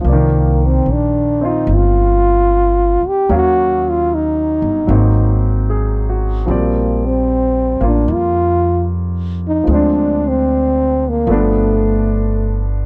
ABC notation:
X:1
M:4/4
L:1/16
Q:"Swing" 1/4=75
K:Bb
V:1 name="Trombone"
B,2 C2 D2 E2 F6 G2 | _G2 F2 E6 z6 | B,2 C4 D2 F4 z2 E2 | D2 C4 B,2 A,6 z2 |]
V:2 name="Grand piano"
z16 | z12 _A2 _G2- | _G z12 z3 | z16 |]
V:3 name="Grand piano"
[E,F,B,d]6 [CEF]8- [CEF]2 | [_G,B,_Df]8 [G,B,CE]8 | [F,G,Cd]6 [B,F]8- [B,F]2 | [F,_A,CD]8 [F,=A,=B,D]8 |]
V:4 name="Upright bass" clef=bass
C,,4 B,,,4 G,,,6 z2 | E,,6 G,,,2 _A,,,8 | B,,,6 A,,,2 F,,8 | D,,8 G,,,8 |]